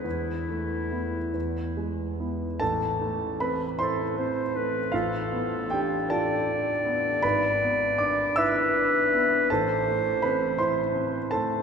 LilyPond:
<<
  \new Staff \with { instrumentName = "Clarinet" } { \time 6/8 \key a \minor \tempo 4. = 52 e'2~ e'8 r8 | r4. a'8 c''8 b'8 | a'4. d''4.~ | d''4. b'4. |
c''2~ c''8 r8 | }
  \new Staff \with { instrumentName = "Grand piano" } { \time 6/8 \key a \minor r2. | <a' a''>4 <b' b''>8 <c'' c'''>4. | <f' f''>4 <g' g''>8 <a' a''>4. | <b' b''>4 <d'' d'''>8 <e'' e'''>4. |
<a' a''>4 <b' b''>8 <c'' c'''>4 <a' a''>8 | }
  \new Staff \with { instrumentName = "Grand piano" } { \time 6/8 \key a \minor e,8 a8 <b e'>8 e,8 gis8 <b e'>8 | a,,8 a8 c'8 e'8 c'8 a8 | a,,8 b8 d'8 f'8 d'8 b8 | gis,,8 b8 d'8 e'8 d'8 b8 |
a,,8 a8 c'8 e'8 c'8 a8 | }
>>